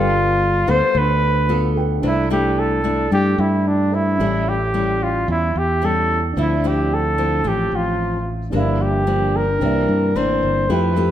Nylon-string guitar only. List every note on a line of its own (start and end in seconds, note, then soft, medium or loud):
0.00 0.92 G3 medium
0.00 0.40 B3 medium
0.00 0.41 F4 medium
0.00 0.41 A4 medium
0.67 1.44 B3 medium
0.67 1.45 F4 medium
0.67 1.45 A4 medium
0.94 2.00 D3 soft
1.49 1.99 B3 medium
1.49 1.99 F4 medium
1.49 1.99 A4 medium
2.02 3.09 C3 soft
2.02 2.26 A3 medium
2.02 2.26 D4 soft
2.02 2.26 E4 soft
2.30 2.80 A3 medium
2.30 2.80 D4 medium
2.30 2.81 E4 medium
2.84 3.07 A3 soft
2.84 3.07 D4 soft
2.84 3.07 E4 medium
3.11 4.17 G3 soft
3.11 4.16 A3 soft
3.11 4.16 D4 soft
3.11 4.16 E4 soft
4.20 5.26 A2 soft
4.20 4.55 G3 soft
4.20 4.55 C#4 soft
4.20 4.55 E4 medium
4.74 5.47 G3 soft
4.74 5.47 C#4 soft
4.74 5.47 E4 medium
5.28 6.34 E3 soft
5.82 6.19 G3 soft
5.82 6.19 C#4 medium
5.82 6.19 E4 medium
6.37 7.42 D3 medium
6.37 6.53 F3 soft
6.37 6.53 C4 soft
6.37 6.53 E4 medium
6.64 7.14 F3 medium
6.64 7.14 C4 medium
6.64 7.14 E4 medium
7.18 7.41 F3 medium
7.18 7.41 C4 medium
7.18 7.41 E4 medium
7.44 8.50 A2 soft
7.44 8.17 F3 medium
7.44 8.17 C4 soft
8.52 9.58 G2 soft
8.52 9.03 F3 soft
8.52 9.03 A#3 medium
8.52 9.03 D4 medium
9.07 9.43 F3 medium
9.07 9.43 A#3 soft
9.07 9.44 D4 medium
9.61 10.67 C3 soft
9.61 10.11 E3 soft
9.61 10.11 A#3 soft
9.61 10.11 D4 soft
10.16 10.67 E3 medium
10.16 10.68 A#3 soft
10.16 10.68 D4 medium
10.69 11.11 F3 medium
10.69 10.92 A3 soft
10.69 10.92 E4 soft
10.69 10.92 G4 medium
10.96 11.11 A3 medium
10.96 11.11 E4 medium
10.96 11.11 G4 medium